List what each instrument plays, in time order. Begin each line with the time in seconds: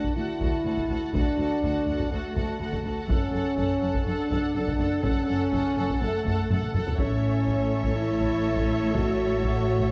Already playing: french horn section D4, viola section F#4, violin section A4 F#5
0.04 taiko
0.15 cello section D2, double bass section D2, french horn section E4, viola section F#4, violin section A4 F#5
0.40 cello section D2, double bass section D2, viola section F#4, violin section A4 F#5, taiko
0.64 double bass section D2, cello section D2, viola section F#4, violin section A4 F#5
0.78 taiko
0.89 cello section D2, double bass section D2, viola section F#4, violin section A4 F#5
1.13 cello section D2, double bass section D2, french horn section D4, viola section F#4, violin section A4 F#5, taiko
1.38 cello section D2, double bass section D2, viola section F#4, violin section A4 F#5
1.63 cello section D2, double bass section D2, viola section F#4, violin section A4 F#5, taiko
1.86 cello section D2, double bass section D2, viola section F#4, violin section A4 F#5
2.00 taiko
2.11 cello section D2, double bass section D2, french horn section A3, viola section F#4, violin section A4 F#5
2.35 cello section D2, double bass section D2, viola section F#4, violin section A4 F#5, taiko
2.59 cello section D2, double bass section D2, viola section F#4, violin section A4 F#5
2.73 taiko
2.83 cello section D2, double bass section D2, viola section F#4, violin section A4 F#5
3.08 double bass section F#1, cello section F#2, french horn section C#4, viola section A4, violin section A4 F#5, taiko
3.32 double bass section F#1, cello section F#2, viola section A4, violin section A4 F#5
3.56 double bass section F#1, cello section F#2, viola section A4, violin section A4 F#5, taiko
3.81 double bass section F#1, cello section F#2, viola section A4, violin section A4 F#5
3.94 taiko
4.06 double bass section F#1, cello section F#2, french horn section D4, violin section A4 F#5, viola section A4
4.29 double bass section F#1, cello section F#2, violin section A4 F#5, viola section A4, taiko
4.54 double bass section F#1, cello section F#2, violin section A4 F#5, viola section A4
4.68 taiko
4.79 double bass section F#1, cello section F#2, violin section A4 F#5, viola section A4
5.03 double bass section F#1, cello section F#2, french horn section C#4, viola section A4, violin section A4 F#5, taiko
5.27 double bass section F#1, cello section F#2, viola section A4, violin section A4 F#5
5.52 double bass section F#1, cello section F#2, viola section A4, violin section A4 F#5, taiko
5.77 double bass section F#1, cello section F#2, viola section A4, violin section A4 F#5
5.89 taiko
6.02 double bass section F#1, cello section F#2, french horn section A3, viola section A4, violin section A4 F#5
6.26 double bass section F#1, cello section F#2, violin section A4 F#5, viola section A4, taiko
6.50 double bass section F#1, cello section F#2, viola section A4, violin section A4 F#5, taiko low-mid
6.62 taiko low-mid
6.74 double bass section F#1, cello section F#2, viola section A4, violin section A4 F#5, taiko low-mid
6.87 taiko low
6.97 double bass section A1, cello section A2, french horn section C#4, viola section A4, violin section C#5 E5, taiko
7.48 taiko
7.84 taiko
7.96 french horn section E4
8.21 taiko
8.57 taiko
8.94 french horn section F#4, taiko
9.43 taiko
9.79 taiko